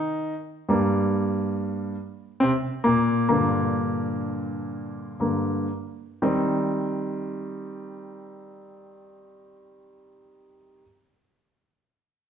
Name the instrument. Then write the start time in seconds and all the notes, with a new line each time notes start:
grand piano
Already playing: D#3 D#4
0.69 G2 G3 A#3
2.40 C3 C4
2.84 A#2 A#3
3.29 G2 A#2 D3 A#3
5.20 G2 D3 A#3
6.22 D#3 G3 C4